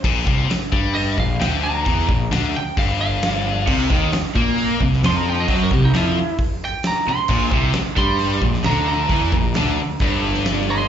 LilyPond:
<<
  \new Staff \with { instrumentName = "Lead electric guitar" } { \time 4/4 \key bes \lydian \tempo 4 = 133 r2 ees''8 f''8 g''8 bes''8~ | bes''4. g''8 f''8 f''4. | r2. c'''16 bes''16 g''16 ees''16 | c''16 bes'16 g'16 ees'16 e'4 r8 g''8 bes''8 c'''8~ |
c'''4 r8 c'''4. bes''8 bes''8~ | bes''2~ bes''8 r4 <ees'' c'''>8 | }
  \new Staff \with { instrumentName = "Overdriven electric guitar" } { \clef bass \time 4/4 \key bes \lydian r1 | r1 | c8 ees8 r8 bes4 c8 f4 | fis8 c8 f8 r2 r8 |
bes,8 c8 r8 g4 bes,8 d4 | e8 bes,8 d8 r8 g,2 | }
  \new Staff \with { instrumentName = "Overdriven electric guitar" } { \clef bass \time 4/4 \key bes \lydian r1 | r1 | c8 ees8 r8 bes4 c8 f4 | fis8 c8 f8 r2 r8 |
bes,8 c8 r8 g4 bes,8 d4 | e8 bes,8 d8 r8 g,2 | }
  \new Staff \with { instrumentName = "Distorted electric guitar" } { \clef bass \time 4/4 \key bes \lydian bes,8 c8 r8 g4 bes,8 d4 | e8 bes,8 d8 r8 g,2 | c8 ees8 r8 bes4 c8 f4 | fis8 c8 f8 r2 r8 |
bes,8 c8 r8 g4 bes,8 d4 | e8 bes,8 d8 r8 g,2 | }
  \new Staff \with { instrumentName = "Picked electric bass" } { \clef bass \time 4/4 \key bes \lydian bes,,8 c,8 r8 g,4 bes,,8 d,4 | e,8 bes,,8 d,8 r8 g,,2 | c,8 ees,8 r8 bes,4 c,8 f,4 | fis,8 c,8 f,8 r2 r8 |
bes,,8 c,8 r8 g,4 bes,,8 d,4 | e,8 bes,,8 d,8 r8 g,,2 | }
  \new DrumStaff \with { instrumentName = "Drums" } \drummode { \time 4/4 <cymc bd>8 bd8 <hho sn>8 bd8 hho8 bd8 <hho sn>4 | <hho bd>8 bd8 <hho sn>4 <hho bd>4 <hho sn>4 | <cymc bd>8 bd8 <hho sn>8 bd8 hho8 bd16 sn16 <hho sn>4 | <hho bd>8 bd8 <hho sn>4 <hho bd>4 <hho sn>4 |
<cymc bd>8 bd8 <hho sn>8 bd8 hho8 bd16 sn16 <hho sn>4 | <hho bd>8 bd8 <hho sn>4 <hho bd>8. sn16 <hho sn>4 | }
>>